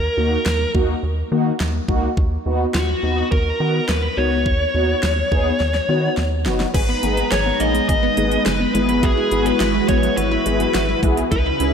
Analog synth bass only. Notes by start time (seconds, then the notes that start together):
0.17 D#2
0.46 D#2
0.75 D#2
1.03 D#2
1.32 D#3
1.60 D#2
1.88 C#2
2.17 D#2
2.46 D#2
2.74 D#2
3.03 D#2
3.32 D#2
3.60 D#3
3.89 D#2
4.17 C#2
4.46 D#2
4.74 D#2
5.03 D#2
5.32 D#2
5.60 D#2
5.89 D#3
6.17 D#2
6.46 F#1
6.74 G#1
7.03 G#1
7.32 G#1
7.60 A#1
7.89 G#1
8.17 G#1
8.46 F#1
8.74 G#1
9.32 G#1
9.60 G#1
9.89 A#1
10.17 G#1
10.46 G#1
10.74 G#1
11.03 B1
11.32 C#2
11.60 C#2